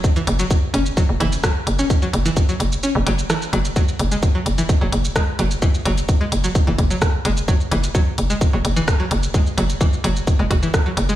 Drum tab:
HH |--oo--o---o---o-|--oo--o---o---oo|--oo--o---o---o-|--oo--o---o---o-|
SH |xx-xx--xx--xx--x|xx-xxx-xx--xxx-x|xx-xx--xx--xx--x|xx-xx--xx--xx--x|
SD |------------r---|------------r---|------------r---|------------r---|
BD |o---o---o---o---|o---o-----------|o---o---o---o---|o---o---o-o-o---|

HH |--oo--o---o---o-|--oo--o---o---o-|
SH |xx-xx--xx--xx--x|xx-xxx-xx--xx--x|
SD |------------r---|------------r---|
BD |o---o---o---o---|o---o---o-o-o---|